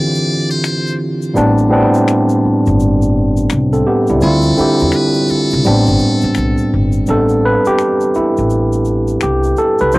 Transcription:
Already playing: tine electric piano D3 E3 C4 E4 F4 G4, muted trumpet D5
0.15 shaker
0.50 muted trumpet C5, shaker
0.64 finger snap, shaker
0.87 shaker
1.22 shaker
1.34 upright bass A1, tine electric piano A2 G3 B3 C4 D4, shaker
1.58 shaker
1.69 tine electric piano A2 G3 B3 C4 D4
1.94 shaker
2.08 finger snap, shaker
2.29 shaker
2.45 muted upright bass stroke
2.66 upright bass G1, shaker
2.80 shaker
3.02 shaker
3.37 shaker
3.50 upright bass C2, finger snap, shaker
3.73 tine electric piano C4 A4, shaker
3.87 tine electric piano B3 G4
4.07 upright bass C2, tine electric piano G3 E4, shaker
4.21 upright bass D2, tine electric piano D3 C4 E4 F4, muted trumpet A4, shaker
4.42 shaker
4.57 tine electric piano D3 C4 E4 G4, muted upright bass stroke, shaker
4.79 upright bass E2, shaker
4.92 muted trumpet B4, finger snap, shaker
5.14 shaker
5.28 muted trumpet A4, muted upright bass stroke, shaker
5.51 upright bass C2, shaker
5.64 upright bass A1, tine electric piano A2 G3 B3 C4 D4, shaker
5.86 upright bass G1, shaker
5.99 shaker
6.21 upright bass A1, shaker
6.35 upright bass B1, finger snap, shaker
6.58 shaker
6.74 upright bass G1
6.92 shaker
7.07 upright bass A1, tine electric piano G3 B3 C4 D4 A4, shaker
7.29 shaker
7.46 tine electric piano B4
7.65 tine electric piano G4, muted upright bass stroke, shaker
7.79 finger snap, shaker
8.01 shaker
8.14 tine electric piano E4, muted upright bass stroke, shaker
8.37 upright bass A1, shaker
8.50 shaker
8.72 shaker
8.85 shaker
9.08 shaker
9.21 upright bass C2, tine electric piano G4, finger snap, shaker
9.43 shaker
9.57 tine electric piano A4, shaker
9.79 upright bass C2, tine electric piano B4, shaker
9.92 upright bass D2, tine electric piano F3 C4 E4 C5, shaker

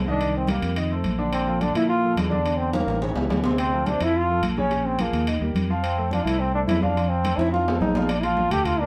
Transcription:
Already playing: fingered electric bass C2
0.06 grand piano D#3 D#4 D#5, high conga
0.10 trombone D4
0.20 grand piano D#3 D#4 D#5, high conga, high timbale
0.34 trombone C4, high conga
0.47 grand piano G3 G4 A#4, trombone A#3, high conga, high timbale
0.62 fingered electric bass F2, high timbale
0.75 grand piano D#3 D#4 D#5, high conga, high timbale
0.89 grand piano A3 A4 C5, high conga
1.04 fingered electric bass A#1, high conga, high timbale
1.18 grand piano D3 D4 D5
1.33 trombone C4, high timbale
1.47 grand piano F3 F4 A4, high conga
1.61 grand piano D3 D4 D5, trombone D4, high conga, high timbale
1.75 fingered electric bass A#2, grand piano F3 F4 A4, trombone E4, high conga, high timbale
1.89 trombone F4, high conga
2.03 grand piano F3 F4 A4, high conga
2.16 fingered electric bass E2, high conga, high timbale, low timbale
2.30 grand piano D3 D4 D5, trombone D4, high conga
2.46 grand piano D3 D4 D5, high conga, high timbale
2.58 trombone C4, high conga
2.73 grand piano G3 G4 A#4, trombone A#3, high conga, high timbale
2.87 fingered electric bass A1, high timbale
3.02 grand piano C#3 C#4 C#5, high conga, high timbale
3.16 fingered electric bass C#2, grand piano E3 E4 G4, high conga, low timbale
3.29 fingered electric bass D2, high conga, low timbale
3.44 grand piano C3 C4 C5, low timbale
3.58 trombone C4, high conga, high timbale
3.72 grand piano F3 F4 A4, high conga
3.86 grand piano C3 C4 C5, trombone D4, high conga, high timbale
4.00 fingered electric bass F2, grand piano F3 F4 A4, trombone E4, high conga, high timbale
4.15 trombone F4, high conga
4.29 grand piano F3 F4 A4, high conga
4.42 fingered electric bass A#1, high conga, high timbale
4.57 grand piano C#3 C#4 C#5, trombone C#4, high conga
4.71 grand piano C#3 C#4 C#5, high timbale
4.85 trombone C4, high conga
4.99 grand piano F3 F4 G#4, trombone A#3, high conga, high timbale
5.13 fingered electric bass D#2, high conga, high timbale
5.27 grand piano D#3 D#4 D#5, high conga, high timbale
5.41 fingered electric bass D#2, grand piano G3 G4 A#4, high conga
5.54 fingered electric bass F2, high conga, high timbale
5.70 grand piano F3 F4 F5
5.83 trombone C4, high timbale
5.97 grand piano A3 A4 C5, high conga
6.11 grand piano F3 F4 F5, trombone D4, high conga, high timbale
6.25 fingered electric bass C2, grand piano A3 A4 C5, trombone E4, high conga, high timbale
6.39 trombone C4, high conga
6.54 grand piano A3 A4 C5, trombone D4, high conga
6.67 fingered electric bass F2, trombone E4, high conga, high timbale, low timbale
6.82 grand piano F3 F4 F5, trombone D4, high conga
6.97 grand piano F3 F4 F5, high conga, high timbale
7.09 trombone C4, high conga
7.24 grand piano A3 A4 C5, high conga, high timbale
7.38 fingered electric bass F2, trombone E4, high conga, high timbale
7.52 grand piano F3 F4 F5, trombone F4, high conga, high timbale
7.67 grand piano A3 A4 C5, high conga, low timbale
7.81 fingered electric bass A#1, trombone D#4, high conga, low timbale
7.95 grand piano F3 F4 F5, high conga, low timbale
8.09 trombone D4, high conga, high timbale
8.23 grand piano F3 F4 F5, trombone F4, high conga, high timbale
8.37 high conga, low timbale
8.51 fingered electric bass D2, grand piano A3 A4 A5, trombone G4, low conga, high timbale
8.65 trombone F4, high conga, low conga, high timbale
8.79 grand piano A#3 A#4 A#5, trombone D4, high conga

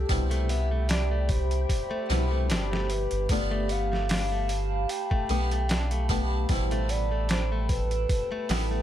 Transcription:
Already playing: synth texture G4, soft synth lead A4
0.09 sub bass C2, harpsichord B2 G3 D4 E4, ambient pad G4 E5 G5 B5, soft synth lead C5, kick, open hi-hat
0.31 clean electric guitar A3, closed hi-hat
0.49 clean electric guitar B3, soft synth lead E5, open hi-hat
0.71 clean electric guitar A3
0.89 clean electric guitar D4, soft synth lead D5, snare, open hi-hat
1.11 clean electric guitar A3
1.29 soft synth lead C5, kick, open hi-hat
1.51 closed hi-hat
1.69 kick, open hi-hat
1.91 clean electric guitar A3
2.09 sub bass C2, harpsichord B2 G3 D4 E4, clean electric guitar B3, snare, open hi-hat
2.31 clean electric guitar A3
2.50 sub bass G1, clean electric guitar D4, snare, open hi-hat
2.71 clean electric guitar A3, snare
2.90 soft synth lead B4, open hi-hat
3.11 sub bass G1, closed hi-hat
3.29 harpsichord A3 B3 D4 F4, soft synth lead D5, ambient pad F5 A5 B5, kick, open hi-hat
3.51 clean electric guitar A3
3.69 clean electric guitar B3, soft synth lead F5, open hi-hat
3.92 clean electric guitar A3, snare
4.09 clean electric guitar D4, snare, open hi-hat
4.32 clean electric guitar A3
4.49 open hi-hat
4.89 soft synth lead G5, open hi-hat
5.11 clean electric guitar A3, kick
5.29 sub bass B1, harpsichord A3 B3 D4 G4, clean electric guitar B3, open hi-hat
5.51 clean electric guitar A3, closed hi-hat
5.69 clean electric guitar D4, snare, open hi-hat
5.91 clean electric guitar A3, closed hi-hat
6.09 harpsichord A3 B3 D4 G4, kick, open hi-hat
6.49 sub bass A1, harpsichord B2 G3 E4, ambient pad A4 G5 A5, soft synth lead C5, kick, open hi-hat
6.71 clean electric guitar A3, closed hi-hat
6.89 clean electric guitar B3, soft synth lead D5, open hi-hat
7.12 clean electric guitar A3
7.29 clean electric guitar D4, soft synth lead C5, snare, open hi-hat
7.52 clean electric guitar A3
7.69 soft synth lead B4, kick, open hi-hat
7.91 closed hi-hat
8.09 kick, open hi-hat
8.32 clean electric guitar A3
8.49 sub bass A1, harpsichord G3 B3 E4, clean electric guitar B3, snare, open hi-hat
8.71 clean electric guitar A3

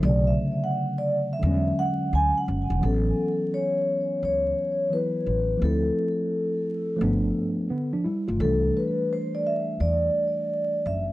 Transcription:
0.00 upright bass B1, tine electric piano D3 F#3
0.04 tine electric piano C#3 A3, vibraphone D5
0.27 vibraphone E5
0.64 vibraphone F#5
0.98 vibraphone D5
1.33 vibraphone E5
1.39 upright bass E2, tine electric piano D3 F#3
1.44 tine electric piano G3 C#4
1.50 tine electric piano G#3
1.79 vibraphone F#5
2.13 upright bass D2, vibraphone G#5
2.38 vibraphone F#5
2.48 upright bass F#1
2.70 upright bass E1
2.79 tine electric piano E3 F#3
2.83 upright bass A1, tine electric piano B3 C#4, vibraphone A4
3.54 vibraphone C#5
4.23 upright bass C#2, vibraphone C#5
4.90 tine electric piano E3 F#3 B3 E4, vibraphone B4
5.26 upright bass A1
5.57 tine electric piano F3 A3
5.62 upright bass D2, tine electric piano C4 E4, vibraphone A4
6.96 tine electric piano F3 A3
7.01 upright bass G1, tine electric piano B3 D4
7.70 tine electric piano D3 B3
7.93 tine electric piano F3 D4
8.05 tine electric piano G3 E4
8.28 upright bass G1, tine electric piano A3 F4
8.37 upright bass C2, tine electric piano D#3 G3, vibraphone A4
8.42 tine electric piano E3 A3 D4
8.77 vibraphone B4
9.13 vibraphone C5
9.35 vibraphone D5
9.47 vibraphone E5
9.80 upright bass E2, vibraphone D5
10.86 upright bass F#1, vibraphone E5

